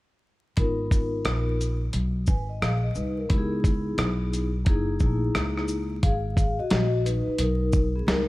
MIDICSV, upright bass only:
0, 0, Header, 1, 3, 480
1, 0, Start_track
1, 0, Tempo, 681818
1, 404, Time_signature, 4, 2, 24, 8
1, 5830, End_track
2, 0, Start_track
2, 0, Title_t, "Upright bass"
2, 0, Program_c, 0, 32
2, 404, Note_on_c, 0, 32, 81
2, 860, Note_off_c, 0, 32, 0
2, 880, Note_on_c, 0, 34, 73
2, 1338, Note_off_c, 0, 34, 0
2, 1364, Note_on_c, 0, 35, 84
2, 1592, Note_off_c, 0, 35, 0
2, 1605, Note_on_c, 0, 32, 81
2, 1833, Note_off_c, 0, 32, 0
2, 1841, Note_on_c, 0, 34, 80
2, 2071, Note_off_c, 0, 34, 0
2, 2080, Note_on_c, 0, 36, 75
2, 2310, Note_off_c, 0, 36, 0
2, 2324, Note_on_c, 0, 37, 87
2, 2780, Note_off_c, 0, 37, 0
2, 2799, Note_on_c, 0, 35, 80
2, 3257, Note_off_c, 0, 35, 0
2, 3285, Note_on_c, 0, 30, 87
2, 3513, Note_off_c, 0, 30, 0
2, 3524, Note_on_c, 0, 34, 82
2, 3752, Note_off_c, 0, 34, 0
2, 3762, Note_on_c, 0, 37, 84
2, 4219, Note_off_c, 0, 37, 0
2, 4246, Note_on_c, 0, 32, 99
2, 4618, Note_off_c, 0, 32, 0
2, 4724, Note_on_c, 0, 34, 82
2, 5097, Note_off_c, 0, 34, 0
2, 5199, Note_on_c, 0, 35, 86
2, 5658, Note_off_c, 0, 35, 0
2, 5680, Note_on_c, 0, 37, 84
2, 5830, Note_off_c, 0, 37, 0
2, 5830, End_track
3, 0, Start_track
3, 0, Title_t, "Muted upright bass strokes"
3, 4637, Note_on_c, 9, 29, 41
3, 4707, Note_off_c, 9, 29, 0
3, 5116, Note_on_c, 9, 29, 44
3, 5187, Note_off_c, 9, 29, 0
3, 5830, End_track
0, 0, End_of_file